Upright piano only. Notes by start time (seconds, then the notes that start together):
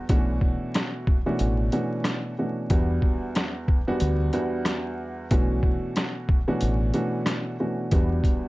0.09 B2 E3 A3 C#4 D4 F#4
1.26 B2 E3 A3 C#4 D4 F#4
1.72 B2 E3 A3 C#4 D4 F#4
2.38 B2 E3 A3 C#4 D4 F#4
2.70 E2 G3 B3 D4 F#4
3.87 E2 G3 B3 D4 F#4
4.33 E2 G3 B3 D4 F#4
5.31 B2 E3 A3 C#4 D4 F#4
6.48 B2 E3 A3 C#4 D4 F#4
6.94 B2 E3 A3 C#4 D4 F#4
7.60 B2 E3 A3 C#4 D4 F#4
7.92 E2 G3 B3 D4 F#4